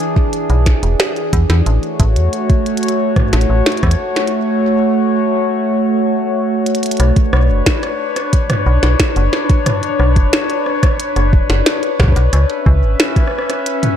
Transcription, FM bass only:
0.50 B1
0.83 E1
1.33 E2
1.50 E2
1.66 A1
2.00 A1
2.16 E2
3.33 A1
3.50 A1
3.83 E2
7.00 B1
7.33 B1
7.50 F#1
8.66 B1
8.83 B1
9.16 F#1
10.00 B1
10.16 F#1
11.16 F#1
11.50 F#1
12.00 B1
12.16 B1
12.33 C#2
12.66 C#2
12.83 G#1

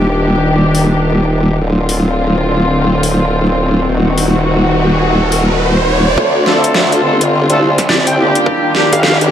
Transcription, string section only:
Already playing: D#3 D4 G4
1.60 D3 C4 F4
3.88 D#3 F#4
6.17 D3 C4 F4
8.46 D#3 D4 G4

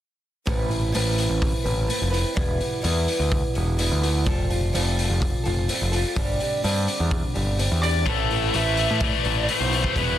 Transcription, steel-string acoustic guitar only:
0.46 A2 E3 A3 C4 E4 B4
0.68 A3 C4 E4 B4
0.92 A2 E3 A3 C4 E4 B4
1.64 A3 C4 E4 B4
1.87 A3 C4 E4 B4
2.10 A3 C4 E4 B4
2.34 E3 G3 B3 E4
2.58 G3 B3 E4
2.82 E3 G3 B3 E4
3.54 G3 B3 E4
3.77 E3 G3 B3 E4
4.02 G3 B3 E4
4.25 F3 G3 C4 F4 A4
4.48 C4 F4 A4
4.73 F3 G3 C4 F4 A4
5.44 C4 F4 A4
5.68 G3 C4 F4 A4
5.91 C4 F4 A4
6.15 G2 D3 G3 C4 D4 G4
6.39 G3 C4 D4 G4
6.62 G2 D3 G3 C4 D4 G4
7.34 G3 C4 D4 G4
7.57 G3 C4 D4 G4
7.81 G3 C4 D4 G4
8.05 A2 E3 A3 C4 E4 B4
8.28 A3 C4 E4 B4
8.51 A3 C4 E4 B4
9.23 A3 C4 E4 B4
9.48 A2 E3 A3 C4 E4
9.71 A3 C4 E4 B4
9.95 E3 G3 B3 E4

